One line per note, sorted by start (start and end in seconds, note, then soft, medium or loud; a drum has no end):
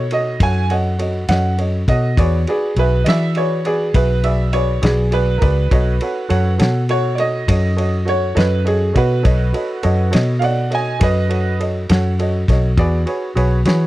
0.00 0.37 B2 medium
0.00 0.11 C#5 medium
0.11 0.34 F#4 medium
0.11 0.34 A4 soft
0.11 0.34 C#5 soft
0.11 0.41 D#5 medium
0.11 0.34 D#5 medium
0.11 ride medium
0.40 1.25 F#2 loud
0.40 0.63 F#4 soft
0.40 0.63 A4 soft
0.40 0.63 C#5 soft
0.40 0.64 F#5 medium
0.40 0.70 G#5 medium
0.40 kick medium
0.40 ride medium
0.70 0.92 F#4 medium
0.70 0.93 A4 soft
0.70 0.93 C#5 soft
0.70 0.93 D#5 medium
0.70 1.27 F#5 medium
0.70 ride medium
0.99 1.21 F#4 soft
0.99 1.21 A4 soft
0.99 1.21 C#5 soft
0.99 1.22 D#5 medium
0.99 ride medium
1.29 1.84 F#2 loud
1.29 1.51 F#4 medium
1.29 1.51 A4 soft
1.29 1.51 C#5 soft
1.29 1.52 D#5 medium
1.29 1.58 F#5 medium
1.29 snare loud
1.29 ride medium
1.58 1.80 F#4 soft
1.58 1.81 A4 soft
1.58 1.81 C#5 soft
1.58 1.81 D#5 soft
1.58 ride medium
1.88 2.15 B2 medium
1.88 2.10 F#4 soft
1.88 2.10 A4 soft
1.88 2.10 C#5 soft
1.88 2.17 D#5 medium
1.88 2.10 F#5 medium
1.88 kick medium
1.88 ride medium
2.17 2.45 E2 loud
2.17 2.39 F#4 medium
2.17 2.40 G#4 medium
2.17 2.40 B4 medium
2.17 2.47 C#5 medium
2.17 2.40 D5 medium
2.17 kick loud
2.17 ride medium
2.47 2.70 F#4 medium
2.47 2.69 G#4 soft
2.47 2.77 G#4 medium
2.47 2.70 B4 medium
2.47 2.70 D5 medium
2.47 ride medium
2.76 3.04 B1 loud
2.76 2.99 F#4 medium
2.76 2.99 G#4 medium
2.76 2.99 B4 soft
2.76 3.07 B4 medium
2.76 3.00 E5 medium
2.76 ride medium
3.04 3.91 E3 medium
3.04 3.28 F#4 medium
3.04 3.28 G#4 soft
3.04 3.29 B4 medium
3.04 3.29 D5 medium
3.04 3.07 D#5 medium
3.04 ride medium
3.08 3.36 E5 medium
3.08 snare medium
3.35 3.58 F#4 medium
3.35 3.58 G#4 medium
3.35 3.58 B4 soft
3.35 3.65 C#5 medium
3.35 3.58 D5 medium
3.35 ride soft
3.65 3.87 F#4 medium
3.65 3.87 G#4 soft
3.65 3.94 G#4 medium
3.65 3.88 B4 soft
3.65 3.88 D5 medium
3.65 ride soft
3.94 4.79 B1 medium
3.94 4.16 F#4 medium
3.94 4.17 G#4 soft
3.94 4.23 B4 medium
3.94 4.17 B4 soft
3.94 4.17 E5 medium
3.94 kick medium
3.94 ride medium
4.23 4.46 F#4 medium
4.23 4.46 G#4 soft
4.23 4.46 B4 soft
4.23 4.47 D5 medium
4.23 4.53 E5 medium
4.23 ride medium
4.53 4.75 F#4 soft
4.53 4.76 G#4 soft
4.53 4.76 B4 soft
4.53 4.82 C#5 medium
4.53 4.76 D5 medium
4.53 ride medium
4.82 5.38 B1 loud
4.82 5.05 F#4 medium
4.82 5.05 G#4 medium
4.82 5.12 G#4 medium
4.82 5.05 B4 medium
4.82 5.05 D5 medium
4.82 snare loud
4.82 ride medium
5.11 5.34 F#4 medium
5.11 5.34 G#4 soft
5.11 5.35 B4 soft
5.11 5.41 B4 medium
5.11 5.35 D5 medium
5.11 ride medium
5.38 5.64 F#4 medium
5.38 5.64 G#4 soft
5.38 5.42 A#4 medium
5.38 5.64 B4 soft
5.38 ride medium
5.42 5.69 C#2 medium
5.42 6.57 B4 medium
5.42 5.64 D5 medium
5.42 kick medium
5.71 5.98 B1 medium
5.71 5.93 F#4 medium
5.71 5.94 A4 medium
5.71 5.94 C#5 medium
5.71 5.94 D#5 medium
5.71 kick loud
5.71 ride medium
6.01 6.23 F#4 medium
6.01 6.24 A4 soft
6.01 6.24 C#5 soft
6.01 6.24 F#5 medium
6.01 ride medium
6.29 6.57 F#2 medium
6.29 6.52 F#4 medium
6.29 6.52 A4 medium
6.29 6.52 C#5 medium
6.29 6.53 F#5 medium
6.29 ride medium
6.58 7.44 B2 medium
6.58 6.81 F#4 medium
6.58 6.82 A4 medium
6.58 6.82 C#5 medium
6.58 6.82 F#5 medium
6.58 snare loud
6.58 ride medium
6.89 7.11 F#4 medium
6.89 7.12 A4 medium
6.89 7.12 C#5 soft
6.89 7.19 C#5 medium
6.89 7.12 F#5 medium
6.89 ride medium
7.15 7.41 F#4 medium
7.15 7.19 D5 medium
7.15 ride medium
7.19 7.41 A4 soft
7.19 7.41 C#5 medium
7.19 8.05 D#5 medium
7.19 7.41 D#5 medium
7.47 8.32 F#2 loud
7.47 7.70 F#4 medium
7.47 7.70 A4 medium
7.47 7.71 C#5 medium
7.47 7.71 D#5 medium
7.47 kick medium
7.47 ride medium
7.77 7.99 F#4 medium
7.77 7.99 A4 medium
7.77 8.00 C#5 soft
7.77 8.00 D#5 medium
7.77 ride medium
8.05 8.28 F#4 medium
8.05 8.29 A4 soft
8.05 8.28 C#5 soft
8.05 8.37 C#5 medium
8.05 8.29 F#5 medium
8.05 ride medium
8.35 8.92 F#2 loud
8.35 8.58 F#4 medium
8.35 8.58 A4 medium
8.35 8.65 B4 medium
8.35 8.58 C#5 medium
8.35 8.58 D#5 medium
8.35 ride medium
8.39 snare loud
8.64 8.87 F#4 soft
8.64 8.95 G#4 medium
8.64 8.87 A4 soft
8.64 8.88 C#5 soft
8.64 8.88 D#5 medium
8.64 ride medium
8.93 9.23 B2 medium
8.93 9.16 F#4 soft
8.93 9.17 A4 soft
8.93 9.17 C#5 soft
8.93 9.17 D#5 medium
8.93 kick medium
8.93 ride medium
8.97 10.10 F#4 medium
8.97 10.11 B4 medium
9.23 9.52 B1 loud
9.23 9.46 F#4 medium
9.23 9.46 A4 medium
9.23 9.46 C#5 medium
9.23 9.47 D#5 medium
9.23 kick loud
9.23 ride medium
9.53 9.76 F#4 medium
9.53 9.76 A4 medium
9.53 9.76 C#5 soft
9.53 9.76 D#5 medium
9.53 ride medium
9.83 10.11 F#2 medium
9.83 10.05 F#4 medium
9.83 10.06 A4 medium
9.83 10.06 C#5 medium
9.83 10.06 D#5 medium
9.83 ride medium
10.11 10.98 B2 medium
10.11 10.34 F#4 medium
10.11 10.34 A4 medium
10.11 10.35 C#5 medium
10.11 10.35 D#5 medium
10.11 ride medium
10.15 snare loud
10.39 10.64 F#4 medium
10.39 10.64 A4 soft
10.39 10.64 C#5 soft
10.39 10.64 D#5 medium
10.39 10.43 F5 medium
10.39 ride medium
10.43 10.70 D5 medium
10.43 10.72 F#5 medium
10.70 10.93 F#4 soft
10.70 10.93 A4 soft
10.70 10.93 C#5 soft
10.70 10.93 D#5 medium
10.70 11.00 D#5 medium
10.70 ride medium
10.75 11.02 G#5 medium
10.99 11.85 F#2 medium
10.99 11.22 F#4 medium
10.99 11.23 A4 soft
10.99 11.57 B4 medium
10.99 11.23 C#5 soft
10.99 11.23 D#5 medium
10.99 kick medium
10.99 ride medium
11.03 11.59 D#5 loud
11.28 11.52 F#4 medium
11.28 11.52 A4 soft
11.28 11.52 C#5 soft
11.28 11.53 F#5 medium
11.28 ride medium
11.59 11.82 F#4 soft
11.59 11.82 A4 soft
11.59 11.82 C#5 soft
11.59 11.82 D#5 medium
11.59 ride medium
11.89 12.45 F#2 medium
11.89 12.11 F#4 medium
11.89 12.12 A4 medium
11.89 12.12 C#5 medium
11.89 12.12 F#5 medium
11.89 snare loud
11.89 ride medium
12.19 12.41 F#4 medium
12.19 12.41 A4 medium
12.19 12.41 C#5 soft
12.19 12.42 D#5 medium
12.19 ride medium
12.48 12.75 B1 medium
12.48 12.70 F#4 medium
12.48 12.71 A4 soft
12.48 12.71 C#5 medium
12.48 12.71 D#5 medium
12.48 kick medium
12.48 snare soft
12.48 ride medium
12.77 13.04 E2 medium
12.77 12.99 F#4 medium
12.77 13.00 G#4 medium
12.77 13.00 B4 medium
12.77 13.00 D5 medium
12.77 kick loud
12.77 ride medium
13.06 13.28 F#4 medium
13.06 13.29 G#4 medium
13.06 13.29 B4 medium
13.06 13.29 C#5 medium
13.06 ride medium
13.35 13.63 B1 medium
13.35 13.58 F#4 medium
13.35 13.58 G#4 medium
13.35 13.58 B4 medium
13.35 13.58 C#5 medium
13.35 ride medium
13.65 13.87 E3 medium
13.65 13.87 F#4 medium
13.65 13.87 G#4 medium
13.65 13.87 B4 medium
13.65 13.87 C#5 medium
13.65 snare loud
13.65 ride medium